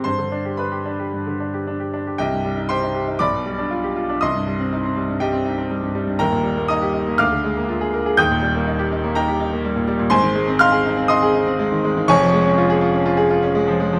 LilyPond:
\new Staff \with { instrumentName = "Grand piano" } { \time 4/4 \key c \minor \tempo 4 = 121 << { <c'' c'''>4 <b' b''>2 r4 | <g' ees'' g''>4 <c'' g'' c'''>4 <d'' b'' d'''>2 | <ees'' c''' ees'''>2 <g' ees'' g''>4. r8 | <bes' g'' bes''>4 <ees'' bes'' ees'''>4 <f'' d''' f'''>2 |
<g'' ees''' g'''>2 <bes' g'' bes''>4. r8 | <c'' aes'' c'''>4 <f'' c''' f'''>4 <ees'' c''' ees'''>2 | <des'' aes'' des'''>1 | } \\ { g,16 d16 d'16 g'16 d'16 g'16 d'16 g'16 g,16 d16 d'16 g'16 d'16 g'16 d'16 g'16 | c,16 g,16 g16 ees'16 g'16 ees'16 g'16 ees'16 b,,16 b,16 g16 d'16 f'16 g'16 f'16 d'16 | c,16 g,16 g16 c'16 ees'16 c'16 g16 g,16 g16 c'16 ees'16 c'16 g16 g,16 g16 g,16 | <ees,, ees,>16 bes,16 g16 bes16 ees'16 g'16 ees'16 bes16 d,16 d16 aes16 bes16 f'16 aes'16 bes'16 aes'16 |
<ees,, ees,>16 bes,16 g16 bes16 ees'16 g'16 ees'16 bes16 ees'16 g'16 ees'16 bes16 g16 bes,16 g16 bes,16 | <aes,, aes,>16 ees16 aes16 c'16 ees'16 aes'16 ees'16 c'16 ees'16 aes'16 ees'16 c'16 aes16 ees16 aes16 ees16 | <f,, f,>16 f16 aes16 des'16 f'16 aes'16 f'16 des'16 f'16 aes'16 f'16 des'16 aes16 f16 aes16 f16 | } >> }